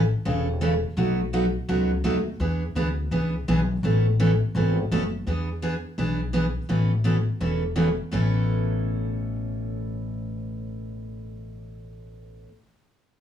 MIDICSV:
0, 0, Header, 1, 3, 480
1, 0, Start_track
1, 0, Key_signature, 3, "major"
1, 0, Tempo, 357356
1, 1311, Time_signature, 4, 2, 24, 8
1, 17733, End_track
2, 0, Start_track
2, 0, Title_t, "Steel-string acoustic guitar"
2, 0, Program_c, 0, 25
2, 340, Note_on_c, 0, 49, 58
2, 340, Note_on_c, 0, 52, 62
2, 343, Note_on_c, 0, 57, 55
2, 348, Note_on_c, 0, 61, 70
2, 351, Note_on_c, 0, 69, 60
2, 635, Note_off_c, 0, 49, 0
2, 635, Note_off_c, 0, 52, 0
2, 637, Note_off_c, 0, 57, 0
2, 639, Note_off_c, 0, 61, 0
2, 641, Note_off_c, 0, 69, 0
2, 819, Note_on_c, 0, 49, 72
2, 822, Note_on_c, 0, 52, 78
2, 823, Note_on_c, 0, 57, 72
2, 830, Note_on_c, 0, 61, 81
2, 830, Note_on_c, 0, 69, 93
2, 979, Note_off_c, 0, 49, 0
2, 980, Note_off_c, 0, 52, 0
2, 980, Note_off_c, 0, 57, 0
2, 984, Note_off_c, 0, 61, 0
2, 984, Note_off_c, 0, 69, 0
2, 1304, Note_on_c, 0, 54, 61
2, 1305, Note_on_c, 0, 47, 55
2, 1312, Note_on_c, 0, 63, 58
2, 1313, Note_on_c, 0, 57, 58
2, 1318, Note_on_c, 0, 66, 65
2, 1598, Note_off_c, 0, 47, 0
2, 1598, Note_off_c, 0, 54, 0
2, 1602, Note_off_c, 0, 57, 0
2, 1602, Note_off_c, 0, 63, 0
2, 1605, Note_off_c, 0, 66, 0
2, 1786, Note_on_c, 0, 47, 64
2, 1790, Note_on_c, 0, 54, 69
2, 1794, Note_on_c, 0, 57, 81
2, 1796, Note_on_c, 0, 63, 82
2, 1797, Note_on_c, 0, 66, 78
2, 1943, Note_off_c, 0, 47, 0
2, 1945, Note_off_c, 0, 54, 0
2, 1946, Note_off_c, 0, 57, 0
2, 1948, Note_off_c, 0, 63, 0
2, 1948, Note_off_c, 0, 66, 0
2, 2264, Note_on_c, 0, 47, 63
2, 2265, Note_on_c, 0, 54, 59
2, 2268, Note_on_c, 0, 63, 59
2, 2270, Note_on_c, 0, 57, 56
2, 2272, Note_on_c, 0, 66, 72
2, 2558, Note_off_c, 0, 47, 0
2, 2559, Note_off_c, 0, 54, 0
2, 2560, Note_off_c, 0, 63, 0
2, 2561, Note_off_c, 0, 57, 0
2, 2562, Note_off_c, 0, 66, 0
2, 2738, Note_on_c, 0, 47, 73
2, 2743, Note_on_c, 0, 54, 72
2, 2747, Note_on_c, 0, 57, 86
2, 2753, Note_on_c, 0, 63, 80
2, 2754, Note_on_c, 0, 66, 92
2, 2899, Note_off_c, 0, 47, 0
2, 2901, Note_off_c, 0, 54, 0
2, 2903, Note_off_c, 0, 57, 0
2, 2906, Note_off_c, 0, 63, 0
2, 2907, Note_off_c, 0, 66, 0
2, 3225, Note_on_c, 0, 52, 53
2, 3234, Note_on_c, 0, 59, 61
2, 3234, Note_on_c, 0, 62, 63
2, 3241, Note_on_c, 0, 68, 59
2, 3519, Note_off_c, 0, 52, 0
2, 3523, Note_off_c, 0, 59, 0
2, 3523, Note_off_c, 0, 62, 0
2, 3526, Note_off_c, 0, 68, 0
2, 3707, Note_on_c, 0, 52, 72
2, 3711, Note_on_c, 0, 59, 85
2, 3716, Note_on_c, 0, 62, 74
2, 3722, Note_on_c, 0, 68, 87
2, 3863, Note_off_c, 0, 52, 0
2, 3865, Note_off_c, 0, 59, 0
2, 3868, Note_off_c, 0, 62, 0
2, 3870, Note_off_c, 0, 68, 0
2, 4186, Note_on_c, 0, 52, 64
2, 4191, Note_on_c, 0, 59, 60
2, 4196, Note_on_c, 0, 62, 61
2, 4198, Note_on_c, 0, 68, 65
2, 4479, Note_off_c, 0, 52, 0
2, 4482, Note_off_c, 0, 59, 0
2, 4484, Note_off_c, 0, 62, 0
2, 4485, Note_off_c, 0, 68, 0
2, 4678, Note_on_c, 0, 52, 83
2, 4680, Note_on_c, 0, 62, 76
2, 4681, Note_on_c, 0, 59, 83
2, 4687, Note_on_c, 0, 68, 78
2, 4828, Note_off_c, 0, 52, 0
2, 4830, Note_off_c, 0, 59, 0
2, 4830, Note_off_c, 0, 62, 0
2, 4833, Note_off_c, 0, 68, 0
2, 5156, Note_on_c, 0, 47, 55
2, 5157, Note_on_c, 0, 52, 54
2, 5165, Note_on_c, 0, 57, 63
2, 5168, Note_on_c, 0, 61, 68
2, 5172, Note_on_c, 0, 69, 65
2, 5444, Note_off_c, 0, 47, 0
2, 5445, Note_off_c, 0, 52, 0
2, 5448, Note_off_c, 0, 57, 0
2, 5450, Note_off_c, 0, 61, 0
2, 5452, Note_off_c, 0, 69, 0
2, 5636, Note_on_c, 0, 47, 69
2, 5636, Note_on_c, 0, 57, 82
2, 5637, Note_on_c, 0, 52, 78
2, 5641, Note_on_c, 0, 69, 82
2, 5642, Note_on_c, 0, 61, 76
2, 5787, Note_off_c, 0, 47, 0
2, 5788, Note_off_c, 0, 52, 0
2, 5788, Note_off_c, 0, 57, 0
2, 5790, Note_off_c, 0, 61, 0
2, 5790, Note_off_c, 0, 69, 0
2, 6117, Note_on_c, 0, 47, 53
2, 6120, Note_on_c, 0, 52, 57
2, 6128, Note_on_c, 0, 57, 62
2, 6131, Note_on_c, 0, 69, 64
2, 6132, Note_on_c, 0, 61, 59
2, 6404, Note_off_c, 0, 47, 0
2, 6406, Note_off_c, 0, 52, 0
2, 6410, Note_off_c, 0, 57, 0
2, 6411, Note_off_c, 0, 69, 0
2, 6412, Note_off_c, 0, 61, 0
2, 6602, Note_on_c, 0, 47, 74
2, 6605, Note_on_c, 0, 52, 67
2, 6609, Note_on_c, 0, 57, 88
2, 6611, Note_on_c, 0, 61, 88
2, 6616, Note_on_c, 0, 69, 83
2, 6750, Note_off_c, 0, 47, 0
2, 6752, Note_off_c, 0, 52, 0
2, 6754, Note_off_c, 0, 57, 0
2, 6755, Note_off_c, 0, 61, 0
2, 6757, Note_off_c, 0, 69, 0
2, 7080, Note_on_c, 0, 52, 55
2, 7085, Note_on_c, 0, 59, 54
2, 7091, Note_on_c, 0, 68, 67
2, 7094, Note_on_c, 0, 62, 61
2, 7366, Note_off_c, 0, 52, 0
2, 7368, Note_off_c, 0, 59, 0
2, 7371, Note_off_c, 0, 68, 0
2, 7372, Note_off_c, 0, 62, 0
2, 7553, Note_on_c, 0, 52, 73
2, 7556, Note_on_c, 0, 59, 67
2, 7563, Note_on_c, 0, 62, 71
2, 7566, Note_on_c, 0, 68, 84
2, 7706, Note_off_c, 0, 52, 0
2, 7707, Note_off_c, 0, 59, 0
2, 7710, Note_off_c, 0, 62, 0
2, 7712, Note_off_c, 0, 68, 0
2, 8030, Note_on_c, 0, 52, 61
2, 8037, Note_on_c, 0, 59, 58
2, 8043, Note_on_c, 0, 62, 67
2, 8043, Note_on_c, 0, 68, 64
2, 8320, Note_off_c, 0, 52, 0
2, 8324, Note_off_c, 0, 59, 0
2, 8327, Note_off_c, 0, 62, 0
2, 8327, Note_off_c, 0, 68, 0
2, 8503, Note_on_c, 0, 52, 73
2, 8508, Note_on_c, 0, 59, 75
2, 8515, Note_on_c, 0, 62, 83
2, 8518, Note_on_c, 0, 68, 88
2, 8661, Note_off_c, 0, 52, 0
2, 8663, Note_off_c, 0, 59, 0
2, 8666, Note_off_c, 0, 62, 0
2, 8668, Note_off_c, 0, 68, 0
2, 8983, Note_on_c, 0, 47, 53
2, 8986, Note_on_c, 0, 52, 56
2, 8991, Note_on_c, 0, 57, 56
2, 8994, Note_on_c, 0, 61, 63
2, 8995, Note_on_c, 0, 69, 64
2, 9277, Note_off_c, 0, 47, 0
2, 9279, Note_off_c, 0, 52, 0
2, 9281, Note_off_c, 0, 57, 0
2, 9282, Note_off_c, 0, 61, 0
2, 9283, Note_off_c, 0, 69, 0
2, 9458, Note_on_c, 0, 47, 72
2, 9465, Note_on_c, 0, 52, 79
2, 9468, Note_on_c, 0, 57, 72
2, 9470, Note_on_c, 0, 61, 75
2, 9472, Note_on_c, 0, 69, 82
2, 9618, Note_off_c, 0, 47, 0
2, 9621, Note_off_c, 0, 52, 0
2, 9623, Note_off_c, 0, 57, 0
2, 9624, Note_off_c, 0, 61, 0
2, 9625, Note_off_c, 0, 69, 0
2, 9945, Note_on_c, 0, 47, 54
2, 9948, Note_on_c, 0, 57, 58
2, 9950, Note_on_c, 0, 52, 57
2, 9950, Note_on_c, 0, 61, 60
2, 9955, Note_on_c, 0, 69, 66
2, 10238, Note_off_c, 0, 47, 0
2, 10239, Note_off_c, 0, 57, 0
2, 10240, Note_off_c, 0, 52, 0
2, 10241, Note_off_c, 0, 61, 0
2, 10243, Note_off_c, 0, 69, 0
2, 10418, Note_on_c, 0, 47, 80
2, 10421, Note_on_c, 0, 52, 76
2, 10425, Note_on_c, 0, 61, 75
2, 10427, Note_on_c, 0, 57, 71
2, 10430, Note_on_c, 0, 69, 72
2, 10578, Note_off_c, 0, 47, 0
2, 10579, Note_off_c, 0, 52, 0
2, 10582, Note_off_c, 0, 57, 0
2, 10582, Note_off_c, 0, 61, 0
2, 10584, Note_off_c, 0, 69, 0
2, 10900, Note_on_c, 0, 45, 69
2, 10904, Note_on_c, 0, 47, 64
2, 10912, Note_on_c, 0, 52, 71
2, 10917, Note_on_c, 0, 57, 75
2, 10928, Note_on_c, 0, 61, 79
2, 10928, Note_on_c, 0, 69, 78
2, 16762, Note_off_c, 0, 45, 0
2, 16764, Note_off_c, 0, 47, 0
2, 16768, Note_off_c, 0, 52, 0
2, 16771, Note_off_c, 0, 57, 0
2, 16776, Note_off_c, 0, 61, 0
2, 16776, Note_off_c, 0, 69, 0
2, 17733, End_track
3, 0, Start_track
3, 0, Title_t, "Upright bass"
3, 0, Program_c, 1, 32
3, 0, Note_on_c, 1, 33, 86
3, 157, Note_off_c, 1, 33, 0
3, 347, Note_on_c, 1, 28, 88
3, 1117, Note_off_c, 1, 28, 0
3, 1299, Note_on_c, 1, 35, 82
3, 2072, Note_off_c, 1, 35, 0
3, 2268, Note_on_c, 1, 37, 92
3, 2678, Note_off_c, 1, 37, 0
3, 2738, Note_on_c, 1, 39, 77
3, 3152, Note_off_c, 1, 39, 0
3, 3220, Note_on_c, 1, 40, 83
3, 3609, Note_off_c, 1, 40, 0
3, 3699, Note_on_c, 1, 38, 82
3, 4113, Note_off_c, 1, 38, 0
3, 4181, Note_on_c, 1, 37, 81
3, 4594, Note_off_c, 1, 37, 0
3, 4674, Note_on_c, 1, 35, 86
3, 5081, Note_off_c, 1, 35, 0
3, 5145, Note_on_c, 1, 33, 91
3, 5916, Note_off_c, 1, 33, 0
3, 6107, Note_on_c, 1, 32, 88
3, 6517, Note_off_c, 1, 32, 0
3, 6600, Note_on_c, 1, 30, 73
3, 7004, Note_off_c, 1, 30, 0
3, 7073, Note_on_c, 1, 40, 84
3, 7840, Note_off_c, 1, 40, 0
3, 8032, Note_on_c, 1, 35, 79
3, 8799, Note_off_c, 1, 35, 0
3, 8997, Note_on_c, 1, 33, 83
3, 9763, Note_off_c, 1, 33, 0
3, 9952, Note_on_c, 1, 28, 83
3, 10720, Note_off_c, 1, 28, 0
3, 10911, Note_on_c, 1, 33, 77
3, 16714, Note_off_c, 1, 33, 0
3, 17733, End_track
0, 0, End_of_file